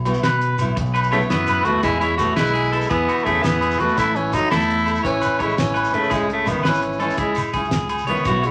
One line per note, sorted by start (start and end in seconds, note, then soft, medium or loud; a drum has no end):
0.00 0.16 B1 medium
0.05 0.16 F#3 medium
0.05 0.17 B3 medium
0.05 0.18 E4 medium
0.05 closed hi-hat soft
0.05 low agogo medium
0.14 shekere medium
0.23 0.54 B2 medium
0.23 0.57 B4 medium
0.23 snare medium
0.23 closed hi-hat medium
0.23 low agogo medium
0.41 closed hi-hat soft
0.41 shekere soft
0.58 0.75 B1 medium
0.58 0.69 F#3 medium
0.58 0.70 B3 medium
0.58 0.71 E4 medium
0.58 closed hi-hat soft
0.58 low agogo medium
0.58 shekere loud
0.76 1.23 B1 loud
0.76 muted clean electric guitar stroke medium
0.76 kick loud
0.76 closed hi-hat medium
0.86 shekere soft
0.94 1.11 B4 medium
0.94 closed hi-hat soft
0.94 low agogo medium
1.03 shekere medium
1.11 1.20 C#3 medium
1.11 1.22 F#3 medium
1.11 1.20 A3 medium
1.11 1.23 B3 medium
1.11 1.24 E4 medium
1.11 1.46 C#5 medium
1.11 closed hi-hat soft
1.11 low agogo medium
1.21 shekere soft
1.29 1.61 F#2 medium
1.29 1.66 E3 medium
1.29 1.66 B3 medium
1.29 snare medium
1.29 closed hi-hat medium
1.29 shekere soft
1.47 1.82 B4 medium
1.47 closed hi-hat soft
1.47 low agogo medium
1.47 shekere medium
1.64 1.81 D#2 medium
1.64 1.82 A3 medium
1.64 1.76 B3 medium
1.64 1.77 E4 medium
1.64 1.83 F#4 loud
1.64 muted steel-string acoustic guitar stroke medium
1.64 closed hi-hat soft
1.81 2.30 E2 medium
1.81 2.00 G#3 medium
1.81 1.93 B3 medium
1.81 1.94 E4 medium
1.81 1.99 E4 medium
1.81 1.94 G#4 medium
1.81 2.00 G#4 medium
1.81 kick medium
1.81 closed hi-hat medium
1.81 low agogo medium
1.81 shekere medium
2.00 2.18 G#3 medium
2.00 2.16 E4 medium
2.00 2.35 C#5 medium
2.00 closed hi-hat soft
2.17 2.36 A3 medium
2.17 2.30 B3 medium
2.17 2.30 E4 medium
2.17 2.35 F#4 medium
2.17 kick medium
2.17 closed hi-hat soft
2.17 low agogo medium
2.17 shekere medium
2.21 2.31 G#4 medium
2.36 2.83 B1 medium
2.36 2.86 G#3 medium
2.36 2.86 E4 medium
2.36 2.53 B4 medium
2.36 snare medium
2.36 closed hi-hat medium
2.36 low agogo medium
2.36 shekere soft
2.46 shekere medium
2.54 2.71 G#4 medium
2.54 closed hi-hat soft
2.64 shekere soft
2.71 2.82 B3 soft
2.71 2.84 G#4 medium
2.71 2.89 A4 medium
2.71 muted steel-string acoustic guitar stroke soft
2.71 closed hi-hat soft
2.71 low agogo medium
2.71 shekere soft
2.81 shekere medium
2.89 3.06 E2 loud
2.89 3.29 E3 medium
2.89 3.26 B3 medium
2.89 3.07 G#4 medium
2.89 kick medium
2.89 closed hi-hat medium
3.08 3.25 F#4 medium
3.08 closed hi-hat soft
3.08 low agogo medium
3.18 shekere soft
3.24 3.42 E2 medium
3.24 3.47 C#3 medium
3.24 3.44 A3 medium
3.24 3.36 B3 medium
3.24 3.37 E4 medium
3.24 3.60 G#4 medium
3.24 kick medium
3.24 closed hi-hat soft
3.24 low agogo medium
3.24 shekere soft
3.28 3.38 G#4 medium
3.35 shekere soft
3.42 3.74 E2 medium
3.42 3.83 E3 medium
3.42 3.81 B3 medium
3.42 snare medium
3.42 closed hi-hat medium
3.42 shekere loud
3.61 3.78 G#4 medium
3.61 closed hi-hat soft
3.61 low agogo medium
3.61 shekere soft
3.71 shekere medium
3.79 3.88 E2 medium
3.79 3.98 A3 medium
3.79 3.90 B3 medium
3.79 3.97 F#4 medium
3.79 3.91 G#4 medium
3.79 4.13 B4 medium
3.79 closed hi-hat soft
3.88 shekere soft
3.97 4.44 A1 medium
3.97 4.18 A3 medium
3.97 4.08 C#4 medium
3.97 4.08 E4 medium
3.97 4.17 E4 medium
3.97 4.08 A4 medium
3.97 kick medium
3.97 closed hi-hat medium
3.97 low agogo medium
3.97 shekere medium
4.15 4.36 E3 medium
4.15 4.36 C#4 medium
4.15 closed hi-hat soft
4.31 4.51 F#3 medium
4.31 4.43 C#4 medium
4.31 4.50 D#4 medium
4.31 4.44 E4 medium
4.31 4.44 A4 medium
4.31 kick medium
4.31 closed hi-hat medium
4.31 low agogo medium
4.31 shekere medium
4.50 4.97 E2 medium
4.50 5.01 A3 medium
4.50 5.01 E4 medium
4.50 4.85 A4 medium
4.50 snare medium
4.50 closed hi-hat medium
4.50 low agogo medium
4.50 shekere soft
4.60 shekere medium
4.71 closed hi-hat soft
4.78 shekere soft
4.86 4.97 E4 medium
4.86 4.98 A4 medium
4.86 closed hi-hat soft
4.86 low agogo medium
4.86 shekere soft
4.95 shekere medium
5.03 5.20 A1 loud
5.03 5.43 E3 medium
5.03 5.42 C#4 medium
5.03 5.21 C#5 medium
5.03 kick medium
5.03 closed hi-hat medium
5.03 shekere soft
5.21 5.39 B4 medium
5.21 closed hi-hat soft
5.21 low agogo medium
5.21 shekere medium
5.32 shekere soft
5.39 5.55 A1 medium
5.39 5.58 G#3 medium
5.39 5.50 C#4 soft
5.39 5.51 E4 medium
5.39 5.57 E4 medium
5.39 5.51 A4 medium
5.39 5.74 C#5 medium
5.39 kick medium
5.39 closed hi-hat soft
5.39 low agogo medium
5.39 shekere soft
5.49 shekere soft
5.57 5.88 A1 medium
5.57 5.97 E3 medium
5.57 5.96 C#4 medium
5.57 snare medium
5.57 closed hi-hat medium
5.57 shekere medium
5.74 6.09 B4 medium
5.74 closed hi-hat soft
5.74 low agogo medium
5.74 shekere soft
5.85 shekere medium
5.90 6.01 G#2 medium
5.90 6.15 A3 medium
5.90 6.03 C#4 medium
5.90 6.04 E4 medium
5.90 6.04 A4 medium
5.90 closed hi-hat soft
5.95 6.13 C#3 medium
6.03 shekere soft
6.09 6.57 C#2 medium
6.09 6.21 G#3 medium
6.09 6.21 E4 medium
6.09 6.27 G#4 medium
6.09 muted steel-string acoustic guitar stroke medium
6.09 kick medium
6.09 closed hi-hat medium
6.09 low agogo medium
6.09 shekere medium
6.13 6.30 C#3 medium
6.13 6.30 G#3 medium
6.30 6.52 C#3 medium
6.30 6.51 A3 medium
6.30 closed hi-hat soft
6.45 6.56 G#3 medium
6.45 6.57 C#4 medium
6.45 6.58 E4 medium
6.45 kick medium
6.45 closed hi-hat soft
6.45 low agogo medium
6.45 shekere medium
6.49 6.66 D#3 medium
6.49 6.66 B3 medium
6.63 7.11 G#1 medium
6.63 6.81 B4 medium
6.63 snare medium
6.63 closed hi-hat medium
6.63 low agogo medium
6.63 shekere soft
6.67 6.99 E3 medium
6.67 7.00 C#4 medium
6.74 shekere medium
6.82 muted clean electric guitar stroke medium
6.82 closed hi-hat soft
6.92 shekere soft
6.98 7.10 G#3 soft
6.98 7.11 C#4 soft
6.98 7.17 C#4 medium
6.98 7.11 E4 medium
6.98 7.17 A4 medium
6.98 closed hi-hat soft
6.98 low agogo medium
6.98 shekere soft
7.05 7.19 E3 medium
7.10 shekere medium
7.17 7.34 C#2 loud
7.17 7.53 G#3 medium
7.17 7.52 E4 medium
7.17 7.35 G#4 medium
7.17 kick medium
7.17 closed hi-hat medium
7.35 closed hi-hat soft
7.35 low agogo medium
7.35 shekere medium
7.46 shekere soft
7.53 7.69 C#2 medium
7.53 7.65 C#4 medium
7.53 7.66 E4 medium
7.53 7.87 G#4 medium
7.53 muted steel-string acoustic guitar stroke soft
7.53 kick medium
7.53 closed hi-hat soft
7.53 low agogo medium
7.53 shekere soft
7.64 shekere soft
7.71 8.02 C#2 medium
7.71 snare medium
7.71 closed hi-hat medium
7.71 shekere medium
7.89 8.06 G#4 medium
7.89 closed hi-hat soft
7.89 low agogo medium
7.89 shekere soft
7.98 shekere medium
8.07 8.16 C#2 medium
8.07 8.24 D#3 medium
8.07 8.18 G#3 medium
8.07 8.24 B3 medium
8.07 8.19 C#4 medium
8.07 8.19 E4 medium
8.07 8.41 C#5 medium
8.07 closed hi-hat soft
8.16 shekere soft
8.25 8.51 B1 medium
8.25 8.36 F#3 medium
8.25 8.46 B3 medium
8.25 8.37 E4 medium
8.25 8.48 F#4 medium
8.25 muted steel-string acoustic guitar stroke medium
8.25 kick medium
8.25 closed hi-hat medium
8.25 low agogo medium
8.25 shekere medium
8.42 8.51 G#3 medium
8.42 8.51 C#5 medium
8.42 closed hi-hat soft
8.42 shekere soft
8.46 8.51 E4 medium